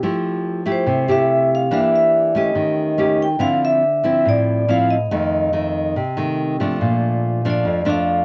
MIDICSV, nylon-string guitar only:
0, 0, Header, 1, 2, 480
1, 0, Start_track
1, 0, Key_signature, -1, "major"
1, 0, Tempo, 423729
1, 27, Time_signature, 4, 2, 24, 8
1, 9344, End_track
2, 0, Start_track
2, 0, Title_t, "Nylon-string guitar"
2, 0, Program_c, 0, 24
2, 26, Note_on_c, 0, 53, 64
2, 29, Note_on_c, 0, 64, 58
2, 30, Note_on_c, 0, 57, 54
2, 35, Note_on_c, 0, 67, 58
2, 708, Note_off_c, 0, 64, 0
2, 709, Note_off_c, 0, 57, 0
2, 712, Note_off_c, 0, 67, 0
2, 738, Note_on_c, 0, 57, 55
2, 744, Note_on_c, 0, 64, 66
2, 749, Note_on_c, 0, 67, 65
2, 962, Note_off_c, 0, 53, 0
2, 975, Note_on_c, 0, 48, 71
2, 1184, Note_off_c, 0, 57, 0
2, 1186, Note_off_c, 0, 64, 0
2, 1189, Note_off_c, 0, 67, 0
2, 1222, Note_on_c, 0, 57, 64
2, 1226, Note_on_c, 0, 64, 56
2, 1236, Note_on_c, 0, 67, 61
2, 1905, Note_off_c, 0, 57, 0
2, 1908, Note_off_c, 0, 64, 0
2, 1910, Note_off_c, 0, 67, 0
2, 1916, Note_off_c, 0, 48, 0
2, 1936, Note_on_c, 0, 52, 70
2, 1941, Note_on_c, 0, 58, 63
2, 1944, Note_on_c, 0, 62, 61
2, 1952, Note_on_c, 0, 67, 66
2, 2624, Note_off_c, 0, 58, 0
2, 2626, Note_off_c, 0, 62, 0
2, 2630, Note_off_c, 0, 67, 0
2, 2662, Note_on_c, 0, 57, 56
2, 2672, Note_on_c, 0, 61, 58
2, 2680, Note_on_c, 0, 67, 66
2, 2877, Note_off_c, 0, 52, 0
2, 2892, Note_on_c, 0, 51, 67
2, 3345, Note_off_c, 0, 57, 0
2, 3350, Note_off_c, 0, 61, 0
2, 3354, Note_off_c, 0, 67, 0
2, 3376, Note_on_c, 0, 57, 58
2, 3383, Note_on_c, 0, 61, 64
2, 3390, Note_on_c, 0, 67, 61
2, 3689, Note_off_c, 0, 57, 0
2, 3693, Note_off_c, 0, 61, 0
2, 3697, Note_off_c, 0, 67, 0
2, 3834, Note_off_c, 0, 51, 0
2, 3842, Note_on_c, 0, 50, 70
2, 3849, Note_on_c, 0, 53, 53
2, 3851, Note_on_c, 0, 60, 59
2, 3852, Note_on_c, 0, 64, 62
2, 4333, Note_off_c, 0, 53, 0
2, 4333, Note_off_c, 0, 60, 0
2, 4335, Note_off_c, 0, 64, 0
2, 4574, Note_on_c, 0, 53, 53
2, 4582, Note_on_c, 0, 60, 57
2, 4590, Note_on_c, 0, 64, 64
2, 4790, Note_off_c, 0, 50, 0
2, 4820, Note_on_c, 0, 45, 65
2, 5261, Note_off_c, 0, 53, 0
2, 5266, Note_off_c, 0, 60, 0
2, 5267, Note_off_c, 0, 64, 0
2, 5306, Note_on_c, 0, 53, 61
2, 5312, Note_on_c, 0, 60, 56
2, 5317, Note_on_c, 0, 64, 58
2, 5614, Note_off_c, 0, 53, 0
2, 5618, Note_off_c, 0, 60, 0
2, 5619, Note_off_c, 0, 64, 0
2, 5758, Note_off_c, 0, 45, 0
2, 5791, Note_on_c, 0, 41, 71
2, 5792, Note_on_c, 0, 51, 60
2, 5798, Note_on_c, 0, 57, 51
2, 6229, Note_off_c, 0, 51, 0
2, 6233, Note_off_c, 0, 57, 0
2, 6264, Note_on_c, 0, 51, 54
2, 6270, Note_on_c, 0, 57, 54
2, 6724, Note_off_c, 0, 41, 0
2, 6741, Note_off_c, 0, 51, 0
2, 6743, Note_off_c, 0, 57, 0
2, 6754, Note_on_c, 0, 48, 71
2, 6988, Note_on_c, 0, 51, 62
2, 6995, Note_on_c, 0, 57, 59
2, 7428, Note_off_c, 0, 51, 0
2, 7430, Note_off_c, 0, 57, 0
2, 7474, Note_on_c, 0, 53, 58
2, 7478, Note_on_c, 0, 57, 53
2, 7486, Note_on_c, 0, 62, 69
2, 7685, Note_off_c, 0, 48, 0
2, 7713, Note_on_c, 0, 46, 70
2, 8390, Note_off_c, 0, 53, 0
2, 8393, Note_off_c, 0, 57, 0
2, 8395, Note_off_c, 0, 62, 0
2, 8437, Note_on_c, 0, 53, 61
2, 8444, Note_on_c, 0, 57, 55
2, 8448, Note_on_c, 0, 62, 73
2, 8644, Note_off_c, 0, 46, 0
2, 8665, Note_on_c, 0, 41, 72
2, 8873, Note_off_c, 0, 53, 0
2, 8874, Note_off_c, 0, 57, 0
2, 8875, Note_off_c, 0, 62, 0
2, 8894, Note_on_c, 0, 53, 61
2, 8899, Note_on_c, 0, 57, 62
2, 8906, Note_on_c, 0, 62, 74
2, 9344, Note_off_c, 0, 41, 0
2, 9344, Note_off_c, 0, 53, 0
2, 9344, Note_off_c, 0, 57, 0
2, 9344, Note_off_c, 0, 62, 0
2, 9344, End_track
0, 0, End_of_file